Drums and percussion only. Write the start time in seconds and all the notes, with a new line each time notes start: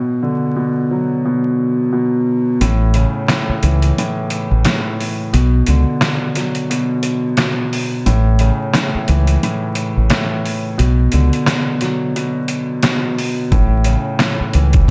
2.61 closed hi-hat
2.94 closed hi-hat
3.28 snare, closed hi-hat
3.63 closed hi-hat
3.82 closed hi-hat
3.98 closed hi-hat
4.30 closed hi-hat
4.65 snare, closed hi-hat
5.00 open hi-hat
5.34 closed hi-hat
5.67 closed hi-hat
6.01 snare, closed hi-hat
6.35 snare, closed hi-hat
6.55 closed hi-hat
6.71 closed hi-hat
7.03 closed hi-hat
7.37 snare, closed hi-hat
7.73 open hi-hat
8.06 closed hi-hat
8.39 closed hi-hat
8.74 snare, closed hi-hat
9.08 closed hi-hat
9.27 closed hi-hat
9.43 closed hi-hat
9.75 closed hi-hat
10.10 snare, closed hi-hat
10.45 open hi-hat
10.79 closed hi-hat
11.12 closed hi-hat
11.33 closed hi-hat
11.46 snare, closed hi-hat
11.81 snare, closed hi-hat
12.16 closed hi-hat
12.48 closed hi-hat
12.83 snare, closed hi-hat
13.18 open hi-hat
13.52 kick, closed hi-hat
13.84 closed hi-hat
14.19 snare, closed hi-hat
14.54 closed hi-hat
14.73 kick, closed hi-hat